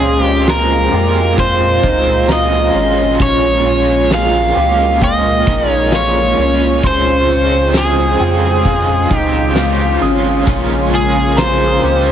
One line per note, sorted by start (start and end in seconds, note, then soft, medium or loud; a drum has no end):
0.00 0.89 C#2 loud
0.00 6.79 A#2 medium
0.00 10.43 G#3 medium
0.00 0.46 C#4 medium
0.00 6.79 F4 medium
0.00 0.47 F4 medium
0.00 0.21 G#4 medium
0.00 3.16 C5 medium
0.04 0.47 G#3 soft
0.04 0.48 C4 medium
0.21 0.49 G4 medium
0.46 0.93 C#3 medium
0.46 0.92 F3 medium
0.46 0.93 G#3 medium
0.46 0.93 C4 medium
0.46 0.92 F4 medium
0.46 0.91 G#4 medium
0.46 1.39 A#4 medium
0.46 snare loud
0.46 closed hi-hat medium
0.46 tambourine medium
0.92 1.79 F2 medium
0.92 1.39 C4 medium
0.92 1.38 F4 medium
0.92 1.37 G4 medium
0.97 1.38 G#3 soft
1.37 1.83 F3 medium
1.37 1.84 G#3 medium
1.37 1.84 C4 medium
1.37 1.83 F4 medium
1.37 2.32 C5 medium
1.37 kick medium
1.37 closed hi-hat medium
1.42 1.84 F4 medium
1.82 2.70 C#2 loud
1.82 2.28 D#4 medium
1.82 2.29 F4 medium
1.82 kick medium
1.87 2.30 G#3 soft
1.87 2.30 C4 soft
2.28 2.74 C#3 medium
2.28 2.75 F3 medium
2.28 2.75 G#3 medium
2.28 2.75 C4 medium
2.28 2.74 F4 medium
2.28 3.61 A#5 medium
2.28 snare loud
2.28 closed hi-hat medium
2.28 tambourine medium
2.32 2.74 F4 medium
2.32 3.17 D#5 medium
2.74 3.17 G#1 medium
2.74 3.21 C4 soft
2.74 3.18 C#4 medium
2.74 3.20 F4 soft
2.79 3.20 G#3 soft
3.19 4.52 A#1 loud
3.19 3.65 A#2 medium
3.19 3.65 F3 medium
3.19 3.66 G#3 medium
3.19 6.80 A#3 medium
3.19 4.10 C#4 medium
3.19 3.65 C#4 medium
3.19 3.62 F4 medium
3.19 4.14 C#5 loud
3.19 kick loud
3.19 closed hi-hat medium
3.64 4.11 C#4 medium
3.64 4.10 F4 medium
3.68 4.11 G#3 soft
4.10 4.56 A#2 medium
4.10 4.56 F3 medium
4.10 4.57 G#3 medium
4.10 4.57 C#4 medium
4.10 4.54 F4 medium
4.10 4.54 G#4 medium
4.10 5.04 F5 loud
4.10 snare loud
4.10 closed hi-hat medium
4.10 tambourine medium
4.55 5.43 C#2 medium
4.55 5.02 C#4 medium
4.55 5.01 F4 medium
4.55 5.00 G4 medium
4.60 5.02 G#3 soft
5.01 5.47 F3 medium
5.01 5.48 G#3 medium
5.01 5.48 C#4 medium
5.01 5.47 F4 medium
5.01 5.70 D#5 loud
5.01 7.25 G5 medium
5.01 kick medium
5.01 closed hi-hat medium
5.05 5.46 F4 medium
5.47 6.34 A#1 medium
5.47 5.93 C#4 soft
5.47 5.92 D#4 medium
5.47 5.92 F4 medium
5.47 kick medium
5.51 5.92 G#3 soft
5.70 5.95 C#5 loud
5.92 6.37 A#2 medium
5.92 6.38 F3 medium
5.92 6.38 G#3 medium
5.92 6.38 C#4 medium
5.92 6.38 F4 medium
5.92 6.36 F4 medium
5.92 6.87 C#5 medium
5.92 snare loud
5.92 closed hi-hat medium
5.92 tambourine medium
6.37 6.81 C2 medium
6.37 6.82 C#4 medium
6.37 6.84 C#4 soft
6.37 6.83 F4 medium
6.42 6.84 G#3 soft
6.83 8.16 C#2 loud
6.83 12.12 C#3 medium
6.83 7.29 C#3 medium
6.83 7.29 F3 medium
6.83 7.29 G#3 medium
6.83 7.30 C4 medium
6.83 7.74 C#4 medium
6.83 12.12 F4 medium
6.83 7.28 F4 medium
6.83 10.43 C5 medium
6.83 9.23 C6 medium
6.83 kick loud
6.83 closed hi-hat medium
6.87 7.79 C5 loud
7.30 7.74 C4 medium
7.30 7.75 F4 medium
7.34 7.73 G#3 soft
7.74 8.19 C#3 medium
7.74 8.20 F3 medium
7.74 8.20 G#3 medium
7.74 8.19 C4 medium
7.74 8.18 F4 medium
7.74 8.20 G#4 medium
7.74 9.17 G#4 medium
7.74 snare loud
7.74 closed hi-hat medium
7.74 tambourine medium
8.19 9.07 F2 medium
8.19 8.64 G#3 soft
8.19 8.65 C4 medium
8.19 8.65 F4 medium
8.19 8.65 G5 medium
8.64 9.10 F3 medium
8.64 9.10 G#3 medium
8.64 9.09 C4 medium
8.64 9.10 F4 medium
8.64 kick medium
8.64 closed hi-hat medium
8.68 9.07 F4 medium
9.08 9.98 C#2 medium
9.08 9.55 C4 medium
9.08 9.55 D#4 medium
9.08 9.55 F4 medium
9.08 kick medium
9.13 9.55 G#3 medium
9.17 9.99 G4 medium
9.55 10.01 C#3 medium
9.55 10.01 F3 medium
9.55 10.02 G#3 medium
9.55 10.01 C4 loud
9.55 10.01 F4 medium
9.55 9.99 F4 medium
9.55 snare loud
9.55 closed hi-hat medium
9.55 tambourine medium
10.00 10.45 G#1 medium
10.00 10.46 G#3 soft
10.00 10.47 C4 medium
10.00 10.45 C#4 medium
10.00 10.46 F4 medium
10.00 10.89 D#6 medium
10.46 11.79 A#1 loud
10.46 10.92 A#2 medium
10.46 10.92 F3 medium
10.46 12.12 G#3 medium
10.46 10.93 G#3 medium
10.46 12.12 A#3 medium
10.46 11.37 C#4 medium
10.46 10.92 C#4 medium
10.46 10.90 F4 loud
10.46 kick loud
10.46 closed hi-hat medium
10.91 11.36 G#3 soft
10.91 11.37 C#4 medium
10.91 11.37 F4 medium
10.91 11.40 G#4 medium
11.37 11.83 A#2 medium
11.37 11.83 F3 medium
11.37 11.83 G#3 medium
11.37 11.83 C#4 medium
11.37 11.81 F4 medium
11.37 11.83 G#4 medium
11.37 12.12 C5 loud
11.37 12.12 A#5 medium
11.37 snare loud
11.37 closed hi-hat medium
11.37 tambourine medium
11.67 12.12 D#6 medium
11.82 12.12 C#2 medium
11.82 12.12 G#3 soft
11.82 12.12 C#4 soft
11.82 12.12 F4 medium
11.82 12.12 G4 medium